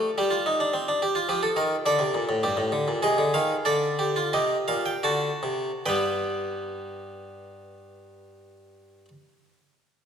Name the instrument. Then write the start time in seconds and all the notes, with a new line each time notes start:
harpsichord
Already playing: A4
0.18 G3 G4
0.30 F4
0.46 D#4
0.60 D4
0.73 C4
0.88 D4
1.02 G4
1.15 F4
1.29 F3 G4
1.43 A4
1.56 D#3 A#4
1.86 D3 A4 D5
1.99 C3
2.14 A#2
2.29 A2
2.43 G2 G4
2.57 A2
2.72 D3
2.88 A#2
3.03 C3 G#4 D#5
3.18 D3
3.34 D#3 F5
3.65 D3 A4 D5
3.99 G4
4.16 F4
4.33 C3 G4 D#5
4.68 A#2 F5
4.86 G5
5.03 D3 F#4 A5
5.43 C3
5.86 G2 G3 B3 B4 G5